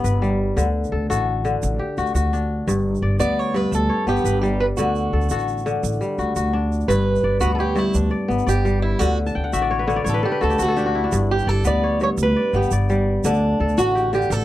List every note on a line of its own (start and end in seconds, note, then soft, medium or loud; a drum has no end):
0.00 0.62 G2 medium
0.00 1.73 B3 medium
0.00 0.63 C#5 medium
0.04 0.50 G1 medium
0.04 1.27 B4 medium
0.04 shaker medium
0.22 0.62 G3 medium
0.22 shaker soft
0.56 0.87 D2 medium
0.56 1.43 D3 medium
0.56 shaker medium
0.84 shaker soft
0.92 1.07 D2 medium
0.92 1.10 A4 medium
1.10 1.55 A1 medium
1.10 1.85 F#4 medium
1.10 2.42 A4 medium
1.10 shaker medium
1.45 2.73 D3 medium
1.45 shaker soft
1.63 1.78 A1 loud
1.63 shaker medium
1.79 3.21 G4 medium
1.98 2.13 D2 medium
1.98 2.15 F#4 medium
1.98 shaker soft
2.06 shaker soft
2.14 2.60 D2 medium
2.14 2.73 F#4 medium
2.14 shaker medium
2.33 3.95 D4 medium
2.33 shaker soft
2.67 2.98 G1 loud
2.67 3.53 G2 medium
2.67 shaker medium
2.95 shaker soft
3.02 3.17 G1 medium
3.02 3.19 D5 medium
3.19 3.65 D2 medium
3.19 4.06 B3 medium
3.19 3.95 D5 medium
3.19 3.39 D5 loud
3.19 shaker medium
3.39 3.56 C#5 medium
3.54 4.83 G2 medium
3.54 3.74 B4 medium
3.54 shaker soft
3.72 3.88 D2 loud
3.72 4.08 A4 medium
3.72 shaker medium
3.89 4.85 C#5 medium
4.06 4.22 G1 medium
4.06 5.93 B3 medium
4.06 4.40 G4 medium
4.06 shaker soft
4.17 shaker soft
4.24 4.70 G1 medium
4.24 5.48 B4 medium
4.24 shaker medium
4.41 4.83 G3 medium
4.41 4.60 G4 medium
4.41 shaker soft
4.60 4.65 B4 medium
4.77 5.08 D2 medium
4.77 5.65 D3 medium
4.77 6.50 F#4 medium
4.77 shaker medium
4.95 shaker soft
5.13 5.28 D2 medium
5.13 5.31 A4 medium
5.21 shaker soft
5.29 5.76 A1 medium
5.29 6.07 F#4 medium
5.29 6.63 A4 medium
5.29 shaker medium
5.38 shaker soft
5.48 shaker soft
5.58 shaker soft
5.66 6.95 D3 medium
5.66 shaker soft
5.83 5.99 A1 medium
5.83 shaker medium
6.01 6.95 G3 medium
6.01 shaker soft
6.18 6.34 D2 medium
6.18 6.36 F#4 medium
6.18 shaker soft
6.36 6.82 D2 medium
6.36 6.95 F#4 medium
6.36 shaker medium
6.53 7.65 D4 medium
6.72 shaker soft
6.80 shaker soft
6.88 7.19 G1 loud
6.88 7.74 G2 medium
6.88 7.40 B4 loud
6.88 shaker medium
7.15 shaker soft
7.24 7.39 G1 medium
7.24 8.10 D5 medium
7.41 7.87 D2 medium
7.41 8.28 B3 medium
7.41 7.54 F#4 medium
7.41 8.64 B4 medium
7.41 shaker medium
7.55 7.59 A4 medium
7.55 8.17 C#5 medium
7.60 7.78 G4 medium
7.75 9.06 G2 medium
7.75 7.96 E4 medium
7.75 shaker soft
7.94 8.10 D2 loud
7.94 8.12 D4 medium
7.94 shaker medium
8.11 8.46 D5 medium
8.28 8.45 G1 medium
8.28 10.15 B3 medium
8.28 shaker soft
8.39 shaker soft
8.46 8.93 G1 medium
8.46 8.82 G4 loud
8.46 9.57 D5 medium
8.46 shaker medium
8.65 9.06 G3 medium
8.65 shaker soft
8.82 8.99 E4 medium
8.99 9.31 D2 medium
8.99 9.86 D3 medium
8.99 9.18 F#4 medium
8.99 shaker medium
9.26 10.13 A5 medium
9.26 shaker soft
9.35 9.51 D2 medium
9.35 9.59 G5 medium
9.44 10.40 F#5 medium
9.53 9.99 A1 medium
9.53 10.40 F#4 medium
9.53 10.57 E5 medium
9.53 shaker medium
9.62 9.94 D5 medium
9.71 9.87 C#5 medium
9.79 10.14 B4 medium
9.88 11.17 D3 medium
9.88 10.04 C#5 medium
9.88 shaker soft
9.96 11.07 D5 medium
10.04 10.22 A1 loud
10.04 10.83 C#5 medium
10.04 shaker medium
10.09 10.25 A4 medium
10.14 10.31 B4 medium
10.23 10.43 G4 medium
10.23 10.41 A4 medium
10.32 11.55 B4 medium
10.41 10.58 D2 medium
10.41 10.58 F#4 medium
10.41 10.68 A4 medium
10.41 10.62 A4 medium
10.41 shaker soft
10.50 10.76 G4 medium
10.50 shaker soft
10.58 11.05 D2 medium
10.58 10.83 F#4 medium
10.58 11.14 F#4 medium
10.58 shaker medium
10.68 12.00 A4 medium
10.77 11.03 D4 medium
10.77 12.18 G4 medium
10.77 shaker soft
10.86 11.19 F#4 medium
10.95 12.52 E4 medium
11.04 11.89 D4 medium
11.12 11.43 G1 loud
11.12 12.00 G2 medium
11.12 shaker medium
11.31 11.49 G4 medium
11.39 shaker soft
11.47 11.62 G1 medium
11.47 11.66 A4 medium
11.47 12.36 D5 medium
11.64 12.10 D2 medium
11.64 12.54 B3 medium
11.64 12.88 B4 medium
11.64 12.03 D5 loud
11.64 shaker medium
11.83 12.42 C#5 medium
12.00 13.29 G2 medium
12.00 12.08 C#5 loud
12.00 shaker soft
12.18 12.33 D2 loud
12.18 shaker medium
12.23 12.57 B4 medium
12.36 12.72 D5 medium
12.53 12.69 G1 medium
12.53 14.41 B3 medium
12.53 12.71 G4 medium
12.53 shaker soft
12.63 shaker soft
12.71 13.17 G1 medium
12.71 13.83 D5 medium
12.71 shaker medium
12.89 13.29 G3 medium
12.89 shaker soft
13.24 13.54 D2 loud
13.24 14.12 D3 medium
13.24 13.80 D4 medium
13.24 shaker medium
13.34 shaker soft
13.60 13.75 D2 medium
13.60 14.45 A4 medium
13.69 shaker soft
13.78 14.23 A1 medium
13.78 14.45 F#4 medium
13.78 14.14 F#4 medium
13.78 shaker medium
13.95 14.45 G4 medium
13.95 shaker soft
14.13 14.45 D3 medium
14.13 14.32 G4 medium
14.13 shaker soft
14.22 shaker soft
14.30 14.45 A1 loud
14.30 14.45 A4 medium
14.30 shaker medium